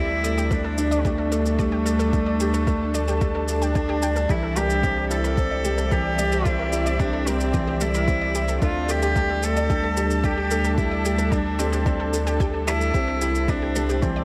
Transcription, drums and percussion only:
0.24 shaker medium
0.38 shaker soft
0.51 kick loud
0.51 shaker soft
0.78 shaker medium
0.92 shaker soft
1.05 kick loud
1.05 shaker soft
1.32 shaker medium
1.46 shaker soft
1.59 kick loud
1.59 shaker soft
1.86 shaker medium
2.00 shaker soft
2.13 kick loud
2.13 shaker soft
2.40 shaker medium
2.54 shaker soft
2.67 kick loud
2.67 shaker soft
2.94 shaker medium
3.08 shaker soft
3.21 kick loud
3.21 shaker soft
3.48 shaker medium
3.62 shaker soft
3.75 kick loud
3.75 shaker soft
4.02 shaker medium
4.16 shaker soft
4.29 kick loud
4.29 shaker soft
4.56 shaker medium
4.70 shaker soft
4.83 kick loud
4.83 shaker soft
5.11 shaker medium
5.25 shaker soft
5.37 kick loud
5.37 shaker soft
5.65 shaker medium
5.78 shaker soft
5.91 kick loud
5.91 shaker soft
6.19 shaker medium
6.32 shaker soft
6.45 kick loud
6.45 shaker soft
6.73 shaker medium
6.86 shaker soft
7.00 kick loud
7.00 shaker soft
7.27 shaker medium
7.40 shaker soft
7.54 kick loud
7.54 shaker soft
7.81 shaker medium
7.94 shaker soft
8.08 kick loud
8.08 shaker soft
8.35 shaker medium
8.48 shaker soft
8.62 kick loud
8.62 shaker soft
8.89 shaker medium
9.02 shaker soft
9.16 kick loud
9.16 shaker soft
9.43 shaker medium
9.57 shaker soft
9.70 kick loud
9.70 shaker soft
9.97 shaker medium
10.11 shaker soft
10.24 kick loud
10.24 shaker soft
10.51 shaker medium
10.65 shaker soft
10.78 kick loud
10.78 shaker soft
11.05 shaker medium
11.19 shaker soft
11.32 kick loud
11.32 shaker soft
11.59 shaker medium
11.73 shaker soft
11.86 kick loud
11.86 shaker soft
12.13 shaker medium
12.27 shaker soft
12.40 kick loud
12.40 shaker soft
12.68 shaker medium
12.81 shaker soft
12.94 kick loud
12.94 shaker soft
13.21 shaker medium
13.35 shaker soft
13.48 kick loud
13.48 shaker soft
13.76 shaker medium
13.89 shaker soft
14.02 kick loud
14.02 shaker soft

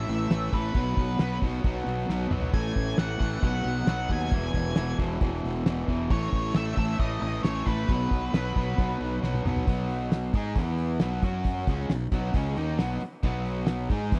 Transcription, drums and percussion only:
0.20 snare soft
0.31 snare loud
0.31 crash medium
0.53 kick medium
0.74 kick loud
0.74 crash medium
0.97 kick medium
1.19 snare loud
1.19 crash medium
1.42 kick medium
1.64 kick loud
1.64 crash medium
1.98 snare soft
2.09 snare medium
2.31 mid tom loud
2.42 floor tom loud
2.53 kick loud
2.53 crash medium
2.76 kick medium
2.98 snare loud
2.98 crash medium
3.20 kick medium
3.43 kick loud
3.43 crash medium
3.87 snare loud
3.87 crash medium
4.09 kick medium
4.31 kick loud
4.31 crash medium
4.54 kick medium
4.76 snare loud
4.76 crash medium
4.99 kick medium
5.21 kick loud
5.21 crash medium
5.54 snare soft
5.66 snare loud
5.66 crash medium
5.88 kick medium
6.10 kick loud
6.10 crash medium
6.33 kick medium
6.54 snare loud
6.54 crash medium
6.77 kick medium
6.99 kick loud
6.99 crash medium
7.33 snare soft
7.44 snare loud
7.44 crash medium
7.67 kick medium
7.89 kick loud
7.89 crash medium
8.11 kick medium
8.34 snare loud
8.34 crash medium
8.56 kick medium
8.78 kick loud
8.78 crash medium
9.23 snare medium
9.34 high tom medium
9.46 mid tom loud
9.57 floor tom medium
9.67 kick loud
9.67 open hi-hat medium
9.90 open hi-hat soft
10.12 snare loud
10.12 open hi-hat medium
10.34 kick loud
10.34 open hi-hat medium
10.55 kick loud
10.55 open hi-hat medium
10.78 open hi-hat medium
11.00 snare loud
11.00 open hi-hat medium
11.23 kick loud
11.23 open hi-hat medium
11.44 kick loud
11.44 open hi-hat medium
11.67 kick loud
11.67 open hi-hat medium
11.90 snare loud
11.90 open hi-hat medium
12.12 kick loud
12.12 open hi-hat medium
12.34 kick loud
12.34 open hi-hat medium
12.56 open hi-hat medium
12.79 snare loud
12.79 open hi-hat medium
13.00 open hi-hat medium
13.23 kick loud
13.23 crash loud
13.46 open hi-hat medium
13.67 snare loud
13.67 open hi-hat medium
13.90 kick loud
13.90 open hi-hat medium
14.12 kick loud
14.12 open hi-hat medium

